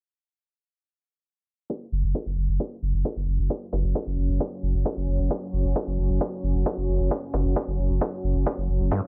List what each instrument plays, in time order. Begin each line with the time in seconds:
1.70 ambient pad F#3 C#4, kick
1.92 sub bass F#1
2.04 sub bass F#1
2.15 kick
2.26 sub bass F#1
2.37 sub bass F#1
2.49 sub bass F#1
2.60 kick
2.82 sub bass F#1
2.94 sub bass F#1
3.05 kick
3.16 sub bass F#1
3.27 sub bass F#1
3.39 sub bass F#1
3.50 kick
3.73 sub bass F#1, kick
3.84 sub bass F#1
3.95 kick
4.07 sub bass F#1
4.18 sub bass F#1
4.29 sub bass F#1
4.40 kick
4.63 sub bass F#1
4.74 sub bass F#1
4.86 kick
4.97 sub bass F#1
5.08 sub bass F#1
5.19 sub bass F#1
5.31 kick
5.53 sub bass F#1
5.65 sub bass F#1
5.76 kick
5.87 sub bass F#1
5.98 sub bass F#1
6.10 sub bass F#1
6.21 kick
6.44 sub bass F#1
6.55 sub bass F#1
6.66 kick
6.78 sub bass F#1
6.89 sub bass F#1
7.00 sub bass F#1
7.11 kick
7.34 sub bass F#1, kick
7.45 sub bass F#1
7.56 kick
7.68 sub bass F#1
7.79 sub bass F#1
7.90 sub bass F#1
8.01 kick
8.24 sub bass F#1
8.35 sub bass F#1
8.46 kick
8.58 sub bass F#1
8.69 sub bass F#1
8.80 sub bass F#1
8.91 acid bass G2, kick, closed hi-hat